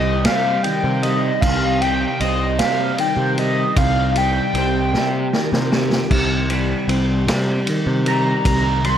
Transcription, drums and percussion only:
0.25 snare loud
0.25 ride loud
0.64 ride medium
1.03 ride medium
1.42 kick loud
1.42 crash medium
1.82 ride medium
2.20 ride medium
2.59 snare loud
2.59 ride medium
2.98 ride medium
3.38 ride medium
3.77 kick loud
3.77 ride medium
4.16 ride medium
4.55 ride medium
4.94 snare medium
5.33 snare medium
5.53 snare medium
5.72 snare loud
5.92 snare medium
6.11 kick loud
6.11 crash loud
6.50 ride medium
6.89 ride medium
7.28 snare loud
7.28 ride medium
7.67 ride medium
8.06 ride medium
8.45 kick loud
8.45 ride loud
8.84 ride medium

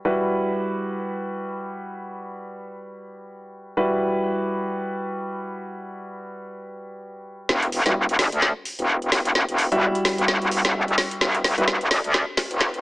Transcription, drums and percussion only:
7.49 snare soft
7.62 closed hi-hat medium
7.72 open hi-hat loud
7.86 snare soft
7.86 closed hi-hat medium
8.09 closed hi-hat medium
8.19 snare medium
8.19 open hi-hat loud
8.32 closed hi-hat medium
8.42 snare medium
8.65 open hi-hat loud
8.79 closed hi-hat medium
9.02 closed hi-hat soft
9.12 snare medium
9.12 open hi-hat loud
9.25 closed hi-hat medium
9.35 snare medium
9.49 closed hi-hat medium
9.58 open hi-hat loud
9.72 closed hi-hat medium
9.95 closed hi-hat medium
10.05 snare medium
10.05 open hi-hat loud
10.18 closed hi-hat medium
10.28 snare medium
10.42 closed hi-hat soft
10.51 open hi-hat loud
10.65 snare medium
10.65 closed hi-hat medium
10.88 closed hi-hat soft
10.98 snare medium
10.98 open hi-hat loud
11.11 closed hi-hat medium
11.21 snare medium
11.35 closed hi-hat medium
11.44 snare medium
11.44 open hi-hat loud
11.58 closed hi-hat medium
11.68 snare medium
11.81 closed hi-hat medium
11.91 snare medium
11.91 open hi-hat loud
12.04 closed hi-hat medium
12.14 snare medium
12.37 snare medium
12.37 open hi-hat loud
12.51 closed hi-hat medium
12.61 snare medium
12.74 closed hi-hat soft

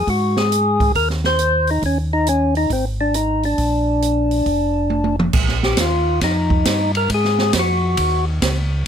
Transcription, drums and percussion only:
0.07 kick soft
0.07 open hi-hat soft
0.37 snare medium
0.52 closed hi-hat medium
0.80 kick medium
0.80 open hi-hat soft
0.95 kick soft
0.95 open hi-hat soft
1.10 snare soft
1.24 snare soft
1.39 closed hi-hat medium
1.67 open hi-hat soft
1.82 kick soft
1.82 open hi-hat soft
2.27 closed hi-hat medium
2.55 open hi-hat soft
2.70 kick soft
2.70 open hi-hat soft
3.14 closed hi-hat medium
3.43 open hi-hat soft
3.58 kick soft
3.58 open hi-hat soft
4.02 closed hi-hat medium
4.31 open hi-hat soft
4.46 kick soft
4.46 open hi-hat soft
4.90 high tom soft
5.04 high tom medium
5.19 mid tom medium
5.33 kick medium
5.33 crash medium
5.48 snare soft
5.63 snare soft
5.77 kick soft
5.77 snare medium
5.77 hi-hat pedal medium
5.77 ride medium
6.21 kick soft
6.21 snare soft
6.21 ride medium
6.50 kick medium
6.65 kick soft
6.65 snare medium
6.65 hi-hat pedal medium
6.65 ride medium
6.95 ride soft
7.10 kick soft
7.10 ride medium
7.25 snare soft
7.39 snare soft
7.53 kick soft
7.53 snare medium
7.53 hi-hat pedal medium
7.53 ride medium
7.97 kick soft
7.97 ride medium
8.42 kick soft
8.42 snare medium
8.42 hi-hat pedal medium
8.42 ride medium

